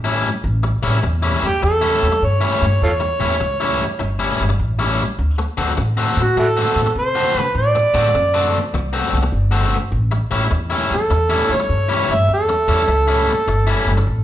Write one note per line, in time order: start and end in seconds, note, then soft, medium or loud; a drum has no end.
0.00 0.26 A1 medium
0.04 0.28 A2 medium
0.04 0.28 G3 medium
0.04 0.28 C#4 medium
0.04 0.27 E4 medium
0.44 0.71 A1 medium
0.63 muted overdriven electric guitar stroke soft
0.83 0.97 A1 medium
0.83 0.96 A2 medium
0.83 0.97 G3 medium
0.83 0.97 C#4 medium
0.83 0.97 E4 medium
1.03 1.31 E2 medium
1.03 muted overdriven electric guitar stroke soft
1.22 1.46 A2 medium
1.22 1.46 G3 medium
1.22 1.46 C#4 medium
1.22 1.46 E4 medium
1.43 1.56 E2 medium
1.43 1.63 G4 medium
1.62 1.90 E2 medium
1.62 2.26 A4 medium
1.62 muted overdriven electric guitar stroke soft
1.81 2.05 A2 medium
1.81 2.05 G3 medium
1.81 2.05 C#4 medium
1.81 2.05 E4 medium
2.02 2.16 E2 medium
2.12 muted overdriven electric guitar stroke soft
2.22 2.49 G2 medium
2.22 2.83 C#5 medium
2.41 2.65 A2 medium
2.41 2.64 G3 medium
2.41 2.64 C#4 medium
2.41 2.64 E4 medium
2.62 2.75 G2 medium
2.82 3.09 E2 medium
2.82 2.90 F4 medium
2.82 2.92 A4 medium
2.82 3.97 C#5 medium
3.00 muted overdriven electric guitar stroke soft
3.20 3.35 E2 medium
3.20 3.33 A2 medium
3.20 3.34 G3 medium
3.20 3.34 C#4 medium
3.20 3.34 E4 medium
3.40 3.82 C#2 medium
3.40 muted overdriven electric guitar stroke soft
3.60 3.83 A2 medium
3.60 3.83 G3 medium
3.60 3.83 C#4 medium
3.60 3.83 E4 medium
3.99 4.27 G1 medium
3.99 muted overdriven electric guitar stroke soft
4.19 4.43 A2 medium
4.19 4.42 G3 medium
4.19 4.42 C#4 medium
4.19 4.42 E4 medium
4.40 4.53 G1 medium
4.49 muted overdriven electric guitar stroke soft
4.59 5.00 A1 medium
4.79 5.02 A2 medium
4.79 5.02 G3 medium
4.79 5.02 C#4 medium
4.79 5.02 E4 medium
5.18 5.45 D2 medium
5.38 muted overdriven electric guitar stroke soft
5.58 5.71 D2 medium
5.58 5.71 D3 medium
5.58 5.71 A3 medium
5.58 5.71 C4 medium
5.58 5.71 F#4 medium
5.77 6.05 A2 medium
5.77 muted overdriven electric guitar stroke soft
5.97 6.20 D3 medium
5.97 6.20 A3 medium
5.97 6.20 C4 medium
5.97 6.20 F#4 medium
6.17 6.30 A2 medium
6.17 6.37 F#4 medium
6.36 6.63 A2 medium
6.36 6.46 E4 medium
6.36 6.48 F#4 medium
6.36 6.93 A4 medium
6.36 muted overdriven electric guitar stroke soft
6.57 6.80 D3 medium
6.57 6.80 A3 medium
6.57 6.80 C4 medium
6.57 6.79 F#4 medium
6.76 6.89 A2 medium
6.86 muted overdriven electric guitar stroke soft
6.95 7.22 C3 medium
6.95 7.38 C5 medium
7.15 7.39 D3 medium
7.15 7.39 A3 medium
7.15 7.38 C4 medium
7.15 7.38 F#4 medium
7.35 7.48 C3 medium
7.35 7.53 B4 medium
7.55 7.82 A2 medium
7.55 8.71 D5 loud
7.75 muted overdriven electric guitar stroke soft
7.94 8.08 A2 medium
7.94 8.07 D3 medium
7.94 8.07 A3 medium
7.94 8.08 C4 medium
7.94 8.08 F#4 medium
8.14 8.55 F#2 medium
8.14 muted overdriven electric guitar stroke soft
8.34 8.57 D3 medium
8.34 8.57 A3 medium
8.34 8.57 C4 medium
8.34 8.57 F#4 medium
8.73 9.01 C2 medium
8.73 muted overdriven electric guitar stroke soft
8.93 9.16 D3 medium
8.93 9.16 A3 medium
8.93 9.16 C4 medium
8.93 9.16 F#4 medium
9.12 9.26 C2 medium
9.23 muted overdriven electric guitar stroke soft
9.32 9.73 G1 medium
9.51 9.75 D3 medium
9.51 9.75 A3 medium
9.51 9.75 C4 medium
9.51 9.75 F#4 medium
9.92 10.19 A1 medium
10.11 muted overdriven electric guitar stroke soft
10.31 10.45 A1 medium
10.31 10.44 A2 medium
10.31 10.44 G3 medium
10.31 10.45 C#4 medium
10.31 10.45 E4 loud
10.51 10.78 E2 medium
10.51 muted overdriven electric guitar stroke soft
10.70 10.94 A2 medium
10.70 10.94 G3 medium
10.70 10.94 C#4 medium
10.70 10.93 E4 medium
10.90 11.04 E2 medium
10.90 11.54 A4 medium
11.10 11.37 E2 medium
11.10 muted overdriven electric guitar stroke soft
11.30 11.53 A2 medium
11.30 11.53 G3 medium
11.30 11.53 C#4 medium
11.30 11.53 E4 medium
11.49 11.63 E2 medium
11.49 12.14 C#5 medium
11.60 muted overdriven electric guitar stroke soft
11.69 11.96 G2 medium
11.89 12.13 A2 medium
11.89 12.12 G3 medium
11.89 12.12 C#4 medium
11.89 12.12 E4 medium
12.09 12.23 G2 medium
12.09 12.31 E5 medium
12.29 12.56 E2 medium
12.34 14.06 A4 medium
12.49 muted overdriven electric guitar stroke soft
12.68 12.82 E2 medium
12.68 12.81 A2 medium
12.68 12.82 G3 medium
12.68 12.82 C#4 medium
12.68 12.82 E4 loud
12.88 13.29 C#2 medium
12.88 muted overdriven electric guitar stroke soft
13.08 13.31 A2 medium
13.08 13.31 G3 medium
13.08 13.31 C#4 medium
13.08 13.31 E4 medium
13.47 13.75 G1 medium
13.47 muted overdriven electric guitar stroke soft
13.67 13.91 A2 medium
13.67 13.90 G3 medium
13.67 13.90 C#4 medium
13.67 13.90 E4 medium
13.87 14.01 G1 medium
13.97 muted overdriven electric guitar stroke soft
14.07 14.24 A1 medium